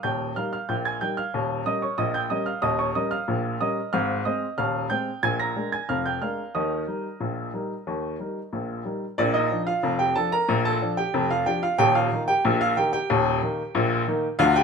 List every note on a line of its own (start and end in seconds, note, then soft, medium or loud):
0.03 0.32 D#1 medium
0.03 0.32 D#2 medium
0.03 0.35 G5 medium
0.03 0.34 G6 medium
0.36 0.55 G3 soft
0.36 0.55 D#4 soft
0.36 0.55 A#4 soft
0.36 0.52 F5 medium
0.36 0.51 F6 medium
0.53 0.68 F5 medium
0.53 0.69 F6 medium
0.69 0.97 A#1 medium
0.69 0.97 A#2 medium
0.69 0.85 G5 medium
0.69 0.85 G6 medium
0.85 1.01 G#5 medium
0.85 1.02 G#6 medium
1.01 1.20 G3 soft
1.01 1.20 D#4 soft
1.01 1.20 A#4 soft
1.01 1.17 G5 medium
1.01 1.18 G6 medium
1.17 1.63 F5 medium
1.17 1.56 F6 medium
1.34 1.62 D#1 medium
1.34 1.62 D#2 medium
1.66 1.84 G3 soft
1.66 1.84 C#4 soft
1.66 1.85 A#4 soft
1.66 1.82 D#5 medium
1.66 1.82 D#6 medium
1.82 1.98 C#5 medium
1.82 1.99 C#6 medium
1.98 2.26 A#1 medium
1.98 2.26 A#2 medium
1.98 2.14 D#5 medium
1.98 2.15 D#6 medium
2.14 2.30 G5 medium
2.14 2.31 G6 medium
2.30 2.49 G3 soft
2.30 2.49 C#4 soft
2.30 2.49 A#4 soft
2.30 2.46 D#5 medium
2.30 2.47 D#6 medium
2.46 2.62 F5 medium
2.46 2.63 F6 medium
2.62 2.90 D#1 medium
2.62 2.90 D#2 medium
2.62 2.78 D#5 medium
2.62 2.79 D#6 medium
2.79 2.95 C#5 medium
2.79 2.95 C#6 medium
2.95 3.14 G3 soft
2.95 3.14 C#4 soft
2.95 3.14 A#4 medium
2.95 3.11 D#5 medium
2.95 3.12 D#6 medium
3.11 3.57 F5 medium
3.11 3.58 F6 medium
3.28 3.56 A#1 medium
3.28 3.56 A#2 medium
3.61 3.79 G3 soft
3.61 3.79 C#4 soft
3.61 3.79 A#4 soft
3.61 3.92 D#5 medium
3.61 3.91 D#6 medium
3.93 4.21 G#1 medium
3.93 4.21 G#2 medium
3.93 4.24 F5 medium
3.93 4.19 F6 loud
4.25 4.43 G#3 soft
4.25 4.44 C4 soft
4.25 4.44 C5 medium
4.25 4.56 D#5 medium
4.25 4.51 D#6 medium
4.58 4.86 D#1 medium
4.58 4.86 D#2 medium
4.58 4.89 F5 medium
4.58 4.89 F6 medium
4.90 5.09 G#3 soft
4.90 5.09 C4 soft
4.90 5.09 C5 soft
4.90 5.21 G5 medium
4.90 5.16 G6 medium
5.23 5.51 A#1 medium
5.23 5.51 A#2 medium
5.23 5.39 G#5 medium
5.23 5.40 G#6 loud
5.40 5.71 A#5 medium
5.40 5.66 A#6 medium
5.56 5.74 G#3 soft
5.56 5.74 D4 soft
5.56 5.75 A#4 soft
5.72 5.88 G#5 medium
5.72 5.89 G#6 medium
5.89 6.17 F1 medium
5.89 6.17 F2 medium
5.89 6.05 F5 medium
5.89 6.05 F6 medium
6.06 6.21 G5 medium
6.06 6.22 G6 medium
6.22 6.40 G#3 soft
6.22 6.41 D4 soft
6.22 6.41 A#4 medium
6.22 6.53 F5 medium
6.22 6.53 F6 medium
6.55 6.83 D#2 medium
6.55 6.83 D#3 medium
6.55 8.49 D#5 medium
6.55 8.13 D#6 medium
6.87 7.06 G3 soft
6.87 7.06 D#4 soft
6.87 7.07 A#4 soft
7.20 7.49 A#1 medium
7.20 7.49 A#2 medium
7.54 7.72 G3 soft
7.54 7.72 D#4 soft
7.54 7.73 A#4 soft
7.87 8.15 D#2 medium
7.87 8.15 D#3 medium
8.20 8.38 G3 soft
8.20 8.38 D#4 soft
8.20 8.39 A#4 soft
8.53 8.81 A#1 medium
8.53 8.81 A#2 medium
8.85 9.03 G3 soft
8.85 9.04 D#4 soft
8.85 9.04 A#4 soft
9.18 9.46 A#1 medium
9.18 9.46 A#2 loud
9.18 9.34 D4 medium
9.18 9.35 D5 loud
9.34 9.66 D#4 medium
9.34 9.60 D#5 loud
9.51 9.69 F3 medium
9.51 9.70 D4 medium
9.67 9.98 F4 medium
9.67 9.98 F5 loud
9.83 10.11 F1 medium
9.83 10.11 F2 medium
9.99 10.15 G4 medium
9.99 10.16 G5 loud
10.15 10.34 F3 medium
10.15 10.34 D4 medium
10.15 10.32 A4 medium
10.15 10.32 A5 loud
10.32 10.63 A#4 medium
10.32 10.59 A#5 loud
10.49 10.77 A#1 medium
10.49 10.77 A#2 loud
10.65 10.96 A4 medium
10.65 10.91 A5 loud
10.82 11.00 F3 medium
10.82 11.00 D4 medium
10.97 11.29 G4 medium
10.97 11.29 G5 loud
11.14 11.42 F1 loud
11.14 11.42 F2 medium
11.31 11.46 F4 medium
11.31 11.47 F5 loud
11.46 11.64 F3 medium
11.46 11.65 D4 medium
11.46 11.62 G4 medium
11.46 11.63 G5 loud
11.63 11.79 F4 medium
11.63 11.79 F5 loud
11.78 12.07 D#1 loud
11.78 12.07 D#2 loud
11.78 11.95 G4 medium
11.78 11.95 G5 loud
11.95 12.26 F4 medium
11.95 12.21 F5 loud
12.12 12.30 D#3 medium
12.12 12.31 A#3 medium
12.12 12.31 D#4 medium
12.28 12.59 G4 medium
12.28 12.54 G5 loud
12.45 12.72 A#1 loud
12.45 12.73 A#2 loud
12.61 12.77 F4 medium
12.61 12.77 F5 loud
12.77 12.95 D#3 medium
12.77 12.96 A#3 medium
12.77 12.96 D#4 medium
12.77 12.93 G4 medium
12.77 12.91 G5 loud
12.93 14.36 G4 medium
12.93 14.35 G5 loud
13.10 13.38 D#1 loud
13.10 13.37 D#2 loud
13.42 13.60 D#3 medium
13.42 13.60 A#3 medium
13.42 13.60 D#4 medium
13.75 14.02 A#1 loud
13.75 14.02 A#2 loud
14.08 14.25 D#3 medium
14.08 14.25 A#3 medium
14.08 14.26 D#4 medium
14.39 14.63 D2 loud
14.39 14.63 D3 loud
14.39 14.55 F4 loud
14.39 14.55 F5 loud
14.56 14.63 G4 medium
14.56 14.63 G5 loud